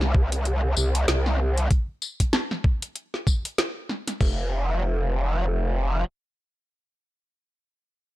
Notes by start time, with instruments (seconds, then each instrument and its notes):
Already playing: wobble bass C2
0.01 snare
0.15 kick
0.32 closed hi-hat
0.45 closed hi-hat
0.77 wobble bass C2, tambourine
0.95 closed hi-hat
1.08 wobble bass C2, snare, closed hi-hat
1.26 snare
1.57 closed hi-hat
1.71 kick, closed hi-hat
2.02 tambourine
2.20 kick, closed hi-hat
2.33 snare
2.51 snare
2.64 kick
2.82 closed hi-hat
2.96 closed hi-hat
3.14 snare
3.27 kick, tambourine
3.45 closed hi-hat
3.58 snare, closed hi-hat
3.89 snare
4.08 snare, closed hi-hat
4.21 wobble bass F1, kick, crash